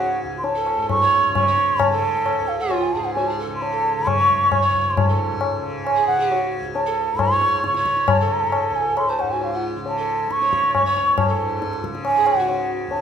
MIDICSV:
0, 0, Header, 1, 5, 480
1, 0, Start_track
1, 0, Tempo, 451467
1, 1918, Time_signature, 7, 2, 24, 8
1, 7180, Tempo, 440205
1, 14006, End_track
2, 0, Start_track
2, 0, Title_t, "Bansuri"
2, 0, Program_c, 0, 73
2, 0, Note_on_c, 0, 78, 88
2, 231, Note_off_c, 0, 78, 0
2, 406, Note_on_c, 0, 84, 60
2, 474, Note_on_c, 0, 81, 89
2, 490, Note_off_c, 0, 84, 0
2, 950, Note_off_c, 0, 81, 0
2, 956, Note_on_c, 0, 85, 99
2, 1404, Note_off_c, 0, 85, 0
2, 1448, Note_on_c, 0, 85, 89
2, 1932, Note_on_c, 0, 81, 96
2, 1948, Note_off_c, 0, 85, 0
2, 2638, Note_on_c, 0, 77, 76
2, 2654, Note_off_c, 0, 81, 0
2, 2776, Note_on_c, 0, 78, 77
2, 2792, Note_off_c, 0, 77, 0
2, 3007, Note_on_c, 0, 80, 71
2, 3023, Note_off_c, 0, 78, 0
2, 3120, Note_on_c, 0, 81, 79
2, 3136, Note_off_c, 0, 80, 0
2, 3239, Note_on_c, 0, 78, 71
2, 3254, Note_off_c, 0, 81, 0
2, 3332, Note_off_c, 0, 78, 0
2, 3338, Note_on_c, 0, 80, 79
2, 3479, Note_on_c, 0, 81, 66
2, 3495, Note_off_c, 0, 80, 0
2, 3602, Note_off_c, 0, 81, 0
2, 3776, Note_on_c, 0, 84, 58
2, 3851, Note_on_c, 0, 81, 89
2, 3867, Note_off_c, 0, 84, 0
2, 4345, Note_on_c, 0, 85, 106
2, 4361, Note_off_c, 0, 81, 0
2, 4813, Note_off_c, 0, 85, 0
2, 4819, Note_on_c, 0, 85, 95
2, 5214, Note_on_c, 0, 84, 51
2, 5230, Note_off_c, 0, 85, 0
2, 5299, Note_on_c, 0, 81, 72
2, 5315, Note_off_c, 0, 84, 0
2, 6004, Note_off_c, 0, 81, 0
2, 6221, Note_on_c, 0, 80, 90
2, 6447, Note_off_c, 0, 80, 0
2, 6458, Note_on_c, 0, 78, 97
2, 6905, Note_off_c, 0, 78, 0
2, 7178, Note_on_c, 0, 81, 87
2, 7675, Note_on_c, 0, 85, 98
2, 7691, Note_off_c, 0, 81, 0
2, 8156, Note_off_c, 0, 85, 0
2, 8176, Note_on_c, 0, 85, 103
2, 8654, Note_on_c, 0, 81, 87
2, 8670, Note_off_c, 0, 85, 0
2, 9362, Note_on_c, 0, 80, 81
2, 9379, Note_off_c, 0, 81, 0
2, 9604, Note_on_c, 0, 84, 82
2, 9620, Note_off_c, 0, 80, 0
2, 9737, Note_on_c, 0, 81, 74
2, 9753, Note_off_c, 0, 84, 0
2, 9852, Note_on_c, 0, 78, 72
2, 9869, Note_off_c, 0, 81, 0
2, 9974, Note_on_c, 0, 80, 73
2, 9991, Note_off_c, 0, 78, 0
2, 10109, Note_on_c, 0, 77, 73
2, 10126, Note_off_c, 0, 80, 0
2, 10234, Note_on_c, 0, 78, 59
2, 10250, Note_off_c, 0, 77, 0
2, 10338, Note_off_c, 0, 78, 0
2, 10599, Note_on_c, 0, 81, 84
2, 11066, Note_on_c, 0, 85, 98
2, 11082, Note_off_c, 0, 81, 0
2, 11529, Note_off_c, 0, 85, 0
2, 11536, Note_on_c, 0, 85, 87
2, 11973, Note_off_c, 0, 85, 0
2, 12015, Note_on_c, 0, 81, 72
2, 12678, Note_off_c, 0, 81, 0
2, 12962, Note_on_c, 0, 80, 93
2, 13188, Note_on_c, 0, 78, 91
2, 13204, Note_off_c, 0, 80, 0
2, 13664, Note_off_c, 0, 78, 0
2, 13895, Note_on_c, 0, 81, 88
2, 14006, Note_off_c, 0, 81, 0
2, 14006, End_track
3, 0, Start_track
3, 0, Title_t, "Pan flute"
3, 0, Program_c, 1, 75
3, 0, Note_on_c, 1, 66, 54
3, 348, Note_off_c, 1, 66, 0
3, 587, Note_on_c, 1, 69, 65
3, 1076, Note_on_c, 1, 73, 68
3, 1091, Note_off_c, 1, 69, 0
3, 1558, Note_off_c, 1, 73, 0
3, 1568, Note_on_c, 1, 73, 65
3, 2041, Note_on_c, 1, 69, 68
3, 2057, Note_off_c, 1, 73, 0
3, 2760, Note_on_c, 1, 65, 57
3, 2776, Note_off_c, 1, 69, 0
3, 3130, Note_on_c, 1, 68, 52
3, 3145, Note_off_c, 1, 65, 0
3, 3367, Note_on_c, 1, 66, 54
3, 3383, Note_off_c, 1, 68, 0
3, 3490, Note_on_c, 1, 68, 47
3, 3506, Note_off_c, 1, 66, 0
3, 3599, Note_off_c, 1, 68, 0
3, 3605, Note_on_c, 1, 69, 46
3, 3716, Note_off_c, 1, 69, 0
3, 3959, Note_on_c, 1, 69, 56
3, 4430, Note_on_c, 1, 73, 63
3, 4446, Note_off_c, 1, 69, 0
3, 4902, Note_off_c, 1, 73, 0
3, 4909, Note_on_c, 1, 73, 66
3, 5407, Note_on_c, 1, 69, 55
3, 5423, Note_off_c, 1, 73, 0
3, 6117, Note_off_c, 1, 69, 0
3, 6342, Note_on_c, 1, 68, 66
3, 6586, Note_on_c, 1, 66, 56
3, 6602, Note_off_c, 1, 68, 0
3, 7062, Note_off_c, 1, 66, 0
3, 7299, Note_on_c, 1, 69, 66
3, 7779, Note_on_c, 1, 73, 69
3, 7796, Note_off_c, 1, 69, 0
3, 8268, Note_off_c, 1, 73, 0
3, 8275, Note_on_c, 1, 73, 69
3, 8761, Note_on_c, 1, 69, 63
3, 8777, Note_off_c, 1, 73, 0
3, 9720, Note_on_c, 1, 72, 56
3, 9737, Note_off_c, 1, 69, 0
3, 9976, Note_on_c, 1, 66, 48
3, 9993, Note_off_c, 1, 72, 0
3, 10211, Note_on_c, 1, 65, 43
3, 10227, Note_off_c, 1, 66, 0
3, 10447, Note_off_c, 1, 65, 0
3, 10696, Note_on_c, 1, 69, 59
3, 11172, Note_on_c, 1, 73, 69
3, 11188, Note_off_c, 1, 69, 0
3, 11645, Note_off_c, 1, 73, 0
3, 11650, Note_on_c, 1, 73, 61
3, 12113, Note_on_c, 1, 69, 54
3, 12130, Note_off_c, 1, 73, 0
3, 12830, Note_off_c, 1, 69, 0
3, 13078, Note_on_c, 1, 68, 63
3, 13322, Note_on_c, 1, 66, 55
3, 13338, Note_off_c, 1, 68, 0
3, 13790, Note_off_c, 1, 66, 0
3, 14006, End_track
4, 0, Start_track
4, 0, Title_t, "Tanpura"
4, 0, Program_c, 2, 104
4, 0, Note_on_c, 2, 37, 65
4, 0, Note_on_c, 2, 44, 60
4, 0, Note_on_c, 2, 49, 56
4, 250, Note_off_c, 2, 37, 0
4, 254, Note_on_c, 2, 37, 54
4, 819, Note_off_c, 2, 44, 0
4, 824, Note_on_c, 2, 44, 52
4, 1378, Note_off_c, 2, 49, 0
4, 1378, Note_on_c, 2, 49, 58
4, 1976, Note_off_c, 2, 49, 0
4, 1976, Note_on_c, 2, 49, 55
4, 2546, Note_off_c, 2, 37, 0
4, 2550, Note_on_c, 2, 37, 64
4, 3118, Note_off_c, 2, 44, 0
4, 3122, Note_on_c, 2, 44, 58
4, 3682, Note_off_c, 2, 49, 0
4, 3682, Note_on_c, 2, 49, 56
4, 4236, Note_off_c, 2, 49, 0
4, 4236, Note_on_c, 2, 49, 57
4, 4803, Note_off_c, 2, 37, 0
4, 4807, Note_on_c, 2, 37, 57
4, 5352, Note_off_c, 2, 44, 0
4, 5356, Note_on_c, 2, 44, 56
4, 5920, Note_off_c, 2, 49, 0
4, 5920, Note_on_c, 2, 49, 58
4, 6464, Note_off_c, 2, 49, 0
4, 6464, Note_on_c, 2, 49, 57
4, 7020, Note_off_c, 2, 37, 0
4, 7025, Note_on_c, 2, 37, 51
4, 7590, Note_off_c, 2, 44, 0
4, 7595, Note_on_c, 2, 44, 56
4, 8160, Note_off_c, 2, 49, 0
4, 8160, Note_on_c, 2, 49, 49
4, 8738, Note_off_c, 2, 49, 0
4, 8738, Note_on_c, 2, 49, 59
4, 9299, Note_off_c, 2, 37, 0
4, 9304, Note_on_c, 2, 37, 54
4, 9871, Note_off_c, 2, 44, 0
4, 9875, Note_on_c, 2, 44, 60
4, 10450, Note_off_c, 2, 49, 0
4, 10450, Note_on_c, 2, 49, 53
4, 11014, Note_off_c, 2, 49, 0
4, 11014, Note_on_c, 2, 49, 54
4, 11593, Note_off_c, 2, 37, 0
4, 11597, Note_on_c, 2, 37, 51
4, 12160, Note_off_c, 2, 44, 0
4, 12164, Note_on_c, 2, 44, 62
4, 12715, Note_off_c, 2, 49, 0
4, 12715, Note_on_c, 2, 49, 56
4, 13271, Note_off_c, 2, 49, 0
4, 13271, Note_on_c, 2, 49, 60
4, 13844, Note_off_c, 2, 37, 0
4, 13848, Note_on_c, 2, 37, 57
4, 14006, Note_off_c, 2, 37, 0
4, 14006, Note_off_c, 2, 44, 0
4, 14006, Note_off_c, 2, 49, 0
4, 14006, End_track
5, 0, Start_track
5, 0, Title_t, "Tabla"
5, 466, Note_on_c, 9, 63, 79
5, 573, Note_off_c, 9, 63, 0
5, 706, Note_on_c, 9, 60, 55
5, 812, Note_off_c, 9, 60, 0
5, 951, Note_on_c, 9, 60, 67
5, 951, Note_on_c, 9, 64, 64
5, 1057, Note_off_c, 9, 60, 0
5, 1057, Note_off_c, 9, 64, 0
5, 1439, Note_on_c, 9, 60, 75
5, 1439, Note_on_c, 9, 64, 67
5, 1546, Note_off_c, 9, 60, 0
5, 1546, Note_off_c, 9, 64, 0
5, 1675, Note_on_c, 9, 62, 57
5, 1782, Note_off_c, 9, 62, 0
5, 1909, Note_on_c, 9, 60, 95
5, 1909, Note_on_c, 9, 64, 87
5, 2015, Note_off_c, 9, 60, 0
5, 2015, Note_off_c, 9, 64, 0
5, 2401, Note_on_c, 9, 60, 70
5, 2507, Note_off_c, 9, 60, 0
5, 2879, Note_on_c, 9, 60, 68
5, 2985, Note_off_c, 9, 60, 0
5, 3369, Note_on_c, 9, 63, 76
5, 3475, Note_off_c, 9, 63, 0
5, 3852, Note_on_c, 9, 63, 72
5, 3958, Note_off_c, 9, 63, 0
5, 4328, Note_on_c, 9, 60, 72
5, 4328, Note_on_c, 9, 64, 68
5, 4434, Note_off_c, 9, 60, 0
5, 4434, Note_off_c, 9, 64, 0
5, 4571, Note_on_c, 9, 64, 53
5, 4677, Note_off_c, 9, 64, 0
5, 4803, Note_on_c, 9, 60, 77
5, 4803, Note_on_c, 9, 64, 65
5, 4909, Note_off_c, 9, 60, 0
5, 4909, Note_off_c, 9, 64, 0
5, 5046, Note_on_c, 9, 64, 54
5, 5152, Note_off_c, 9, 64, 0
5, 5288, Note_on_c, 9, 60, 88
5, 5288, Note_on_c, 9, 64, 92
5, 5395, Note_off_c, 9, 60, 0
5, 5395, Note_off_c, 9, 64, 0
5, 5749, Note_on_c, 9, 60, 69
5, 5856, Note_off_c, 9, 60, 0
5, 6237, Note_on_c, 9, 60, 74
5, 6344, Note_off_c, 9, 60, 0
5, 6715, Note_on_c, 9, 63, 75
5, 6822, Note_off_c, 9, 63, 0
5, 7181, Note_on_c, 9, 63, 79
5, 7290, Note_off_c, 9, 63, 0
5, 7657, Note_on_c, 9, 60, 75
5, 7657, Note_on_c, 9, 64, 65
5, 7766, Note_off_c, 9, 60, 0
5, 7766, Note_off_c, 9, 64, 0
5, 7901, Note_on_c, 9, 62, 57
5, 8010, Note_off_c, 9, 62, 0
5, 8146, Note_on_c, 9, 62, 71
5, 8255, Note_off_c, 9, 62, 0
5, 8260, Note_on_c, 9, 62, 58
5, 8369, Note_off_c, 9, 62, 0
5, 8381, Note_on_c, 9, 37, 58
5, 8490, Note_off_c, 9, 37, 0
5, 8504, Note_on_c, 9, 62, 55
5, 8613, Note_off_c, 9, 62, 0
5, 8625, Note_on_c, 9, 60, 103
5, 8625, Note_on_c, 9, 64, 86
5, 8734, Note_off_c, 9, 60, 0
5, 8734, Note_off_c, 9, 64, 0
5, 9110, Note_on_c, 9, 60, 72
5, 9219, Note_off_c, 9, 60, 0
5, 9597, Note_on_c, 9, 60, 74
5, 9706, Note_off_c, 9, 60, 0
5, 9836, Note_on_c, 9, 60, 57
5, 9945, Note_off_c, 9, 60, 0
5, 10079, Note_on_c, 9, 63, 71
5, 10188, Note_off_c, 9, 63, 0
5, 10565, Note_on_c, 9, 63, 75
5, 10674, Note_off_c, 9, 63, 0
5, 11052, Note_on_c, 9, 62, 68
5, 11161, Note_off_c, 9, 62, 0
5, 11176, Note_on_c, 9, 62, 53
5, 11285, Note_off_c, 9, 62, 0
5, 11296, Note_on_c, 9, 37, 54
5, 11405, Note_off_c, 9, 37, 0
5, 11412, Note_on_c, 9, 62, 54
5, 11521, Note_off_c, 9, 62, 0
5, 11534, Note_on_c, 9, 60, 74
5, 11534, Note_on_c, 9, 64, 65
5, 11643, Note_off_c, 9, 60, 0
5, 11643, Note_off_c, 9, 64, 0
5, 11776, Note_on_c, 9, 62, 60
5, 11885, Note_off_c, 9, 62, 0
5, 12003, Note_on_c, 9, 60, 98
5, 12003, Note_on_c, 9, 64, 84
5, 12112, Note_off_c, 9, 60, 0
5, 12112, Note_off_c, 9, 64, 0
5, 12486, Note_on_c, 9, 62, 68
5, 12595, Note_off_c, 9, 62, 0
5, 12609, Note_on_c, 9, 62, 56
5, 12718, Note_off_c, 9, 62, 0
5, 12727, Note_on_c, 9, 37, 54
5, 12836, Note_off_c, 9, 37, 0
5, 12844, Note_on_c, 9, 62, 55
5, 12952, Note_on_c, 9, 60, 74
5, 12953, Note_off_c, 9, 62, 0
5, 13061, Note_off_c, 9, 60, 0
5, 13192, Note_on_c, 9, 60, 54
5, 13301, Note_off_c, 9, 60, 0
5, 13432, Note_on_c, 9, 63, 72
5, 13541, Note_off_c, 9, 63, 0
5, 13893, Note_on_c, 9, 63, 68
5, 14002, Note_off_c, 9, 63, 0
5, 14006, End_track
0, 0, End_of_file